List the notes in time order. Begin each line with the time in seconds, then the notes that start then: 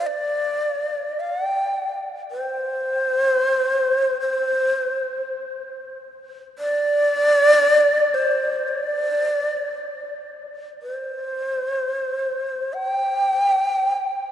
0.07 D5
1.20 F5
1.45 G5
2.31 C5
4.21 C5
6.59 D5
8.14 C5
8.68 D5
10.83 B4
10.94 C5
12.74 G5